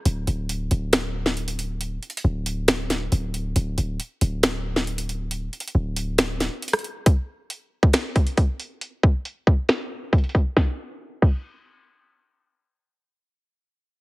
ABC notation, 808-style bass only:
X:1
M:4/4
L:1/16
Q:1/4=137
K:Cmix
V:1 name="808-style bass" clef=bass
D,,,2 D,,,4 D,,,8- D,,,2- | D,,,2 z2 D,,,8 D,,,4 | D,,,2 D,,,2 z2 D,,,8- D,,,2- | D,,,2 z2 D,,,6- D,,, z4 z |
z16 | z16 | z16 | z16 |]